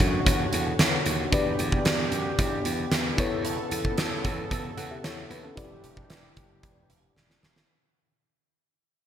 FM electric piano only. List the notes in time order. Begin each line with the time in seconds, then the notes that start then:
Already playing: D4 F#4 A4 C#5
1.32 D4 G4 B4 D5
3.17 E4 A4 B4 C#5
4.77 A4 F#5
4.91 G4 E5
5.04 E4 C#5
5.31 B4
5.43 C#4 A4
5.55 E4 G4 B4 D5